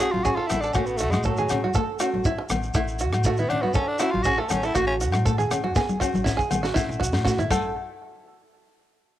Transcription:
0.00 C#4 F#4 G#4, cross-stick, closed hi-hat
0.12 A1 F4, high conga
0.24 C#4 F#4 G#4, kick, shekere
0.35 F4 A4
0.47 A1 E4, cross-stick, closed hi-hat, low agogo, shekere
0.51 B3, high conga, low conga
0.61 D4 A4, shekere
0.73 A1 C#4 F#4, kick, cross-stick, low agogo, shekere
0.77 A3
0.86 B3, shekere
0.97 A3 F#4, closed hi-hat, shekere
1.11 A2 G#3, cross-stick, high conga, low agogo, shekere
1.23 F#3 A3 A4, kick, shekere
1.37 G#4, low conga, shekere
1.49 A2 C#4, cross-stick, closed hi-hat, low conga, low agogo, shekere
1.64 F#4, high conga
1.74 A1 A3 A4, kick, shekere
1.99 C#4 F#4, cross-stick, closed hi-hat, low agogo, shekere
2.14 A1, high conga
2.24 E4, muted nylon-string guitar stroke, kick, shekere
2.38 muted five-string banjo stroke
2.49 A1 B3, cross-stick, closed hi-hat, high conga, low conga, low agogo, shekere
2.63 shekere
2.74 A1 A3 E4, kick, cross-stick, low agogo, shekere
2.88 shekere
2.99 F#4, closed hi-hat, shekere
3.13 A2, cross-stick, high conga, low agogo, shekere
3.24 A3 F#4, kick, shekere
3.37 B3 E4, low conga, shekere
3.49 A2 C#4 D4, closed hi-hat, low conga, low agogo
3.62 B3 F#4, high conga
3.74 A1 C#4 A4, muted nylon-string guitar stroke, kick, shekere
3.88 D4
3.99 C#4 E4 F#4, cross-stick, closed hi-hat, low agogo, shekere
4.11 A1 F4, high conga
4.23 C#4 F#4 G#4, kick, shekere
4.38 A3 A4
4.49 A1 B3 C#4, cross-stick, closed hi-hat, high conga, low conga, low agogo, shekere
4.63 E4 A4, shekere
4.75 A1 A3 F#4, kick, cross-stick, low agogo, shekere
4.87 C#4
5.01 F#4, closed hi-hat, shekere
5.12 A2, cross-stick, high conga, low agogo, shekere
5.25 A3 A4, kick, shekere
5.38 G#4, low conga, shekere
5.51 A2 C#4, cross-stick, closed hi-hat, low conga, low agogo, shekere
5.64 F#4, high conga
5.75 A1 B3 G#4, kick, snare, shekere
5.89 high tom, high conga, shekere
6.00 C#4 F#4, kick, low agogo, shekere
6.14 A1, high tom, high conga, shekere
6.24 C#4 E4, kick, snare, shekere
6.37 G#4, kick, shekere
6.51 A1 B3, mid tom, high conga, low agogo, shekere
6.63 F#4, snare, shekere
6.74 A1 A3 E4, kick, snare, low agogo, shekere
6.89 mid tom, shekere
7.00 F#4, kick, shekere
7.13 A2, snare, low agogo, shekere
7.25 A3 F#4, kick, snare, shekere
7.38 E4, floor tom, low conga, shekere
7.51 A1 A3 A4, kick, crash, high conga, low agogo, shekere

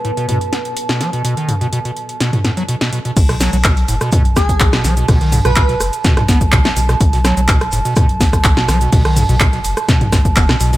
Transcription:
Already playing: B3 F#4 B4 A5 B5
0.05 A2, closed hi-hat
0.17 B2, closed hi-hat
0.29 B2, closed hi-hat, mid tom
0.41 closed hi-hat
0.53 B3, snare, closed hi-hat
0.65 closed hi-hat
0.77 closed hi-hat
0.89 B2, snare, closed hi-hat
1.01 F#3, snare, closed hi-hat
1.13 B2, closed hi-hat
1.25 B2, closed hi-hat
1.37 D#3, closed hi-hat
1.49 C#3, closed hi-hat, mid tom
1.61 B2, closed hi-hat
1.73 B2, closed hi-hat
1.85 B2, closed hi-hat
1.97 closed hi-hat
2.09 closed hi-hat
2.20 B2, snare, closed hi-hat
2.33 B2, closed hi-hat, mid tom
2.45 A2, snare, closed hi-hat
2.57 F#3, closed hi-hat
2.69 B2, closed hi-hat
2.81 B2, snare, closed hi-hat
2.93 B2, closed hi-hat
3.05 B2, closed hi-hat
3.17 B1 A5, kick, closed hi-hat, crash, shaker
3.29 B2, cross-stick, snare, open hi-hat
3.41 F#3, snare, open hi-hat, shaker
3.53 B1 F#3, closed hi-hat, shaker
3.64 B2, kick, cross-stick, snare, clap, closed hi-hat, shaker
3.77 closed hi-hat
3.88 F#1 A2, open hi-hat, shaker
4.01 B2, cross-stick, closed hi-hat, shaker
4.12 B2, kick, closed hi-hat, mid tom, shaker
4.25 B1, closed hi-hat
4.36 B3 G#4, kick, cross-stick, snare, open hi-hat, shaker
4.49 kick, closed hi-hat, shaker
4.60 B1, kick, snare, clap, closed hi-hat, shaker
4.73 B2, cross-stick, snare, closed hi-hat
4.84 B1 F#3, snare, open hi-hat, shaker
4.97 B2, closed hi-hat, shaker
5.08 B1 B2, kick, cross-stick, closed hi-hat, open hi-hat, shaker
5.21 D#3, snare, closed hi-hat
5.32 C#3, mid tom, open hi-hat, shaker
5.45 B1 B2 B4, cross-stick, closed hi-hat, shaker
5.56 B2 B4, kick, snare, clap, closed hi-hat, shaker
5.69 B2, snare, closed hi-hat
5.80 F#1, cross-stick, open hi-hat, shaker
5.93 closed hi-hat, shaker
6.04 B2, kick, snare, closed hi-hat, shaker
6.17 B1 B2, cross-stick, snare, closed hi-hat, mid tom
6.28 B3, kick, snare, open hi-hat, shaker
6.41 kick, closed hi-hat, shaker
6.52 B1 B2, kick, cross-stick, snare, clap, closed hi-hat, shaker
6.65 A3, snare, closed hi-hat
6.76 B1 B2, open hi-hat, shaker
6.89 B2, cross-stick, snare, closed hi-hat, shaker
7.01 B1, kick, closed hi-hat, shaker
7.13 B2, snare, open hi-hat
7.25 F#3, cross-stick, snare, open hi-hat, shaker
7.37 B1 F#3, closed hi-hat, shaker
7.48 B2, kick, snare, clap, closed hi-hat, shaker
7.61 cross-stick, closed hi-hat
7.71 F#1 A2, open hi-hat, shaker
7.85 B2, closed hi-hat, shaker
7.96 B2, kick, cross-stick, closed hi-hat, mid tom, shaker
8.09 B1, closed hi-hat
8.21 B3, kick, snare, open hi-hat, shaker
8.33 kick, cross-stick, closed hi-hat, shaker
8.44 B1, kick, snare, clap, closed hi-hat, shaker
8.57 B2, snare, closed hi-hat
8.68 B1 F#3, cross-stick, snare, open hi-hat, shaker
8.81 B2, closed hi-hat, shaker
8.92 B1 B2, kick, closed hi-hat, open hi-hat, shaker
9.05 D#3, cross-stick, snare, closed hi-hat
9.16 C#3, mid tom, open hi-hat, shaker
9.29 B1 B2, closed hi-hat, shaker
9.40 B2, kick, cross-stick, snare, clap, closed hi-hat, shaker
9.53 B2, snare, closed hi-hat
9.64 F#1, open hi-hat, shaker
9.77 cross-stick, closed hi-hat, shaker
9.89 B2, kick, snare, closed hi-hat, shaker
10.01 B1 B2, closed hi-hat, mid tom
10.12 B2, kick, cross-stick, snare, open hi-hat, shaker
10.25 kick, closed hi-hat, shaker
10.36 F#1 B3, kick, snare, clap, closed hi-hat, shaker
10.49 B2, cross-stick, snare, closed hi-hat
10.60 B1 B2, open hi-hat, shaker
10.72 B2, snare, closed hi-hat, shaker

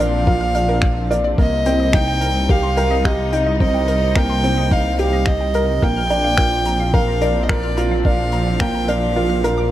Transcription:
Already playing: A#1 A#2 F3 A#3 C4 D4 F4 A#4 D5
0.00 D4 F5
0.27 F4 A#4, kick
0.41 F6
0.54 D4 F6, closed hi-hat
0.69 A#4
0.82 D5, finger snap, kick
1.11 A#4 D5, closed hi-hat
1.24 D5
1.38 C2 C3 A#3 A#4 D#5, kick
1.50 G3
1.65 C4 G5, closed hi-hat
1.80 D#5
1.93 D#4 G5, finger snap, kick
2.03 D#4
2.08 G5
2.21 A#4, closed hi-hat
2.49 G4 A#4 F5, kick
2.63 C6
2.77 A#4 G5, closed hi-hat
2.91 D#5
3.05 G4 A#4 D#5, finger snap, kick
3.32 D#4 G5, closed hi-hat
3.47 D#5
3.60 C4 D#5 G5, kick
3.74 G5
3.88 A#4, closed hi-hat
4.16 A#3 A#4 G5, finger snap, kick
4.30 C6
4.44 C4 G5, closed hi-hat
4.58 D#5
4.71 D#4 A#4 F5, kick
4.98 G4 F5 G5, closed hi-hat
5.13 D#5
5.26 D#5 G5, finger snap, kick
5.41 G5
5.54 A#4, closed hi-hat
5.82 A#1 A#2 A#3 A#4 G5, kick
5.96 F6
6.04 C4
6.10 F3 D4 A#5, closed hi-hat
6.24 F5
6.38 F4 A#4, finger snap, kick
6.61 D4, closed hi-hat
6.66 A#5
6.80 F5
6.94 A#4 F5 A#5, kick
7.08 A#5
7.21 A#4 D5, closed hi-hat
7.43 D#5
7.49 A#4 D5, finger snap, kick
7.63 F6
7.77 F4 A#5, closed hi-hat
7.91 F5
8.05 D4 A#4 F5, kick
8.32 A#5, closed hi-hat
8.47 F5
8.60 A#3 G5 A#5, finger snap, kick
8.75 A#5
8.88 D4 A#4 F5, closed hi-hat
9.16 F4 A#4
9.30 F6
9.44 A#4, closed hi-hat
9.58 D6

